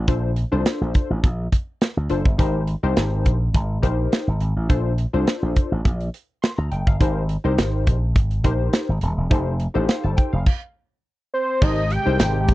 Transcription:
0.08 0.43 A#1 loud
0.08 0.31 D4 medium
0.08 0.31 F4 medium
0.08 0.31 A4 medium
0.08 0.31 C5 medium
0.08 kick loud
0.08 closed hi-hat medium
0.36 closed hi-hat medium
0.52 0.63 C2 medium
0.52 1.12 D4 medium
0.52 1.12 F4 medium
0.52 1.12 A4 medium
0.52 1.12 C5 medium
0.66 snare loud
0.66 closed hi-hat medium
0.81 0.92 A#1 medium
0.94 kick medium
0.94 closed hi-hat medium
1.10 1.21 A1 medium
1.24 1.47 A#1 medium
1.24 kick loud
1.24 closed hi-hat medium
1.52 kick medium
1.52 closed hi-hat medium
1.81 snare loud
1.81 closed hi-hat medium
1.97 2.08 D2 medium
2.10 2.22 F#1 medium
2.10 2.24 D4 medium
2.10 2.24 F4 medium
2.10 2.24 A4 medium
2.10 2.25 C5 medium
2.10 closed hi-hat medium
2.25 2.36 G1 medium
2.25 kick medium
2.38 2.74 G#1 loud
2.38 2.61 D#4 medium
2.38 2.62 G4 medium
2.38 2.62 A#4 medium
2.38 2.62 C5 loud
2.38 kick loud
2.38 closed hi-hat medium
2.67 closed hi-hat medium
2.83 2.94 C2 medium
2.83 3.35 D#4 medium
2.83 3.35 G4 medium
2.83 3.35 A#4 medium
2.83 3.35 C5 medium
2.97 3.26 G#1 medium
2.97 snare loud
2.97 closed hi-hat medium
3.26 3.49 A#1 loud
3.26 kick medium
3.26 closed hi-hat medium
3.54 3.77 G#1 medium
3.54 kick loud
3.54 closed hi-hat medium
3.82 4.06 A#1 medium
3.82 4.28 D#4 medium
3.82 4.28 G4 medium
3.82 4.29 A#4 medium
3.82 4.29 C5 loud
3.82 kick medium
3.82 closed hi-hat medium
4.12 snare loud
4.12 closed hi-hat medium
4.27 4.38 G#1 medium
4.41 4.53 G#1 medium
4.41 closed hi-hat medium
4.56 4.67 A1 medium
4.69 5.05 A#1 loud
4.69 4.92 D4 medium
4.69 4.92 F4 medium
4.69 4.92 A4 medium
4.69 4.93 C5 loud
4.69 kick loud
4.69 closed hi-hat medium
4.98 closed hi-hat medium
5.13 5.25 C2 medium
5.13 5.73 D4 medium
5.13 5.73 F4 medium
5.13 5.73 A4 medium
5.13 5.74 C5 loud
5.27 snare loud
5.27 closed hi-hat medium
5.43 5.53 A#1 medium
5.56 kick loud
5.56 closed hi-hat medium
5.72 5.82 A1 medium
5.85 6.08 A#1 medium
5.85 kick loud
5.85 closed hi-hat medium
6.00 closed hi-hat soft
6.14 closed hi-hat medium
6.42 6.57 C6 medium
6.42 snare loud
6.42 closed hi-hat medium
6.58 6.69 D2 medium
6.58 6.71 A#5 medium
6.71 6.84 F#1 medium
6.71 6.86 G5 medium
6.71 closed hi-hat medium
6.87 6.98 G1 medium
6.87 7.14 F5 medium
6.87 kick medium
7.00 7.36 G#1 loud
7.00 7.23 D#4 medium
7.00 7.23 G4 medium
7.00 7.24 A#4 medium
7.00 7.24 C5 loud
7.00 kick loud
7.00 closed hi-hat medium
7.29 closed hi-hat medium
7.44 7.59 C2 medium
7.44 7.96 D#4 medium
7.44 7.97 G4 medium
7.44 7.97 A#4 medium
7.44 7.97 C5 loud
7.58 7.87 G#1 medium
7.58 snare loud
7.58 closed hi-hat medium
7.87 8.16 A#1 loud
7.87 kick loud
7.87 closed hi-hat medium
8.16 8.39 G#1 medium
8.16 kick loud
8.16 closed hi-hat medium
8.31 closed hi-hat soft
8.44 8.68 A#1 medium
8.44 8.90 D#4 medium
8.44 8.90 G4 medium
8.44 8.90 A#4 medium
8.44 8.90 C5 medium
8.44 kick medium
8.44 closed hi-hat medium
8.73 snare loud
8.73 closed hi-hat medium
8.89 9.00 G#1 medium
9.01 9.15 D#1 loud
9.01 closed hi-hat medium
9.17 9.28 E1 medium
9.30 9.66 F1 loud
9.30 9.54 D#4 medium
9.30 9.54 G4 medium
9.30 9.54 A4 medium
9.30 9.54 C5 medium
9.30 kick loud
9.30 closed hi-hat medium
9.60 closed hi-hat medium
9.74 9.86 A1 medium
9.74 10.34 D#4 medium
9.74 10.35 G4 medium
9.74 10.35 A4 medium
9.74 10.35 C5 medium
9.89 10.03 F5 medium
9.89 snare loud
9.89 closed hi-hat medium
10.04 10.15 G1 medium
10.04 10.17 A5 medium
10.17 10.32 G5 medium
10.17 kick medium
10.17 closed hi-hat medium
10.33 10.44 F1 medium
10.33 10.60 F5 medium
10.46 kick loud
10.46 crash medium
11.34 11.64 C5 medium
11.61 11.97 G#1 loud
11.61 12.54 C3 medium
11.61 12.54 G#3 medium
11.61 11.84 D#4 medium
11.61 11.85 G4 medium
11.61 12.54 G4 loud
11.61 11.85 A#4 medium
11.61 11.85 C5 medium
11.61 11.93 D#5 loud
11.61 kick loud
11.61 crash medium
11.90 12.49 G5 loud
11.90 closed hi-hat medium
12.06 12.17 C2 medium
12.06 12.36 D#4 medium
12.06 12.36 G4 medium
12.06 12.36 A#4 medium
12.06 12.36 C5 medium
12.19 12.49 G#1 medium
12.19 snare loud
12.19 closed hi-hat medium
12.19 tambourine medium
12.48 12.54 A#1 loud
12.48 kick loud
12.48 closed hi-hat medium

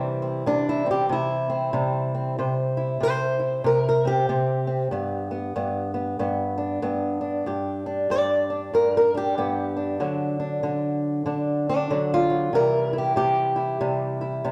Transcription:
0.00 0.46 C3 medium
0.00 2.34 E3 soft
0.00 1.74 G3 soft
0.00 0.22 C4 soft
0.00 0.69 E4 soft
0.22 0.47 C4 soft
0.46 1.09 C3 medium
0.46 0.86 D4 medium
0.69 0.90 E4 medium
0.86 1.48 C4 soft
0.91 1.11 G4 medium
1.09 1.72 C3 medium
1.09 2.39 E4 medium
1.50 2.13 C4 medium
1.73 2.34 C3 medium
1.73 4.05 G3 medium
2.15 2.36 C4 soft
2.39 2.99 C3 medium
2.39 3.02 C5 soft
2.77 3.38 E4 soft
3.00 3.63 C3 medium
3.00 3.66 C5 medium
3.40 4.07 E4 soft
3.64 4.28 C3 medium
3.64 3.87 A#4 medium
3.89 4.09 A#4 medium
4.05 4.28 C4 soft
4.05 6.57 G4 loud
4.29 4.90 C3 medium
4.29 4.66 C4 medium
4.67 4.89 C4 soft
4.91 5.55 G2 medium
4.91 5.31 B3 soft
5.31 5.56 B3 soft
5.56 6.19 G2 medium
5.56 5.94 B3 soft
5.94 6.19 B3 soft
6.19 6.81 G2 medium
6.19 6.82 B3 medium
6.58 7.20 D4 soft
6.82 7.44 G2 medium
6.82 7.44 B3 soft
7.21 7.86 D4 soft
7.46 8.09 G2 medium
7.46 8.74 G4 soft
7.86 8.50 D4 soft
8.10 8.72 G2 medium
8.10 8.75 D5 medium
8.50 9.13 D4 soft
8.73 9.37 G2 medium
8.73 8.96 A#4 medium
8.97 9.17 A#4 medium
9.15 9.75 D4 soft
9.15 10.02 G4 medium
9.38 9.99 G2 medium
9.38 9.99 B3 soft
9.77 9.99 D4 soft
10.00 10.62 D3 medium
10.00 11.90 F#3 soft
10.00 10.39 D4 soft
10.40 10.63 D4 soft
10.63 11.24 D3 medium
10.63 11.25 D4 soft
11.26 11.89 D3 medium
11.26 11.68 D4 soft
11.69 12.13 D4 medium
11.90 12.52 D3 medium
11.90 12.29 F#3 soft
12.14 12.55 F4 medium
12.30 12.52 F#3 soft
12.53 13.15 C3 medium
12.53 14.52 E3 soft
12.53 13.80 G3 soft
12.53 12.92 E4 soft
12.53 12.98 A#4 medium
12.93 13.55 E4 soft
12.98 13.16 G4 medium
13.16 13.79 C3 medium
13.16 14.52 G4 loud
13.56 14.20 E4 soft
13.81 14.43 C3 medium
13.81 14.44 G3 medium
14.21 14.52 E4 soft
14.45 14.52 C3 medium
14.45 14.52 G3 soft

